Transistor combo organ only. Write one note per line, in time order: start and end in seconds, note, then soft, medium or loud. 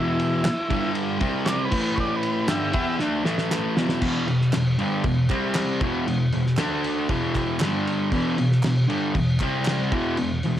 0.00 0.93 E4 loud
1.45 1.48 C#5 medium
1.45 1.64 D5 loud
1.65 1.81 B4 medium
1.83 1.98 B4 medium
1.95 1.98 C#5 medium
2.00 2.15 D5 loud
2.16 2.31 B4 medium
2.32 2.49 B4 medium
2.49 2.96 G4 loud
2.49 2.98 E5 medium